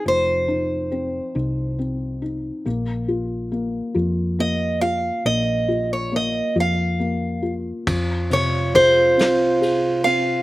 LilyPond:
<<
  \new Staff \with { instrumentName = "Steel-string acoustic guitar" } { \time 6/8 \key f \minor \tempo 4. = 46 c''2 r4 | r2 ees''8 f''8 | ees''8. des''16 ees''8 f''4 r8 | r8 des''8 c''4. f''8 | }
  \new Staff \with { instrumentName = "French horn" } { \time 6/8 \key f \minor r2. | r2. | r2. | f'2. | }
  \new Staff \with { instrumentName = "Felt piano" } { \time 6/8 \key f \minor <f c' ees'>8 ees'8 c'8 ees'8 c'8 ees'8 | bes8 f'8 bes8 f'8 bes8 f'8 | bes8 f'8 bes8 f'8 bes8 f'8 | f8 c8 aes'8 c'8 aes'8 c'8 | }
  \new Staff \with { instrumentName = "Fingered electric bass" } { \clef bass \time 6/8 \key f \minor f,,4. c,4. | bes,,4. f,4. | bes,,4. f,4. | f,4. c,4. | }
  \new DrumStaff \with { instrumentName = "Drums" } \drummode { \time 6/8 r4. r4. | r4. r4. | r4. r4. | <cymc bd>8 cymr8 <bd cymr>8 <cymr sn>8 cymr8 cymr8 | }
>>